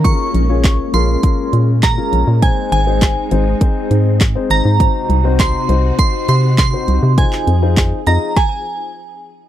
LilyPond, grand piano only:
\new Staff \with { instrumentName = "Grand piano" } { \time 4/4 \key bes \minor \tempo 4 = 101 <des' f' aes' bes'>8 r16 <des' f' aes' des''>8 r16 <des' f' aes' bes'>8 <des' f' aes' bes'>4 r16 <des' f' aes' bes'>8 r16 | <c' ees' aes' c''>8 r16 <c' ees' aes' c''>8 r16 <c' ees' aes' c''>8 <c' ees' aes' c''>4 r16 <c' ees' aes' c''>8 r16 | <c' ees' ges' c''>8 r16 <c' ees' ges' c''>8 r16 <c' ees' ges' c''>8 ees'4 r16 <c' ees' ges' c''>8 r16 | <ees' f' aes' c''>8 r16 <ees' f' aes' c''>8 r16 <ees' f' aes' ees''>8 r2 | }